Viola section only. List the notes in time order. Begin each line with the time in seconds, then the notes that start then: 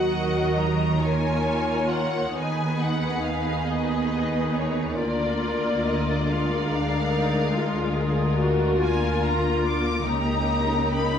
Already playing: F#3 F#4
1.03 A#3 F4
2.35 B3 D#4
3.67 B3 D#4
4.98 A#3 F4
6.28 G#3 F4
6.72 D4
7.14 D#4
7.56 F4
7.97 G#4
8.39 F#4
8.81 A#3 F4
10.07 D#4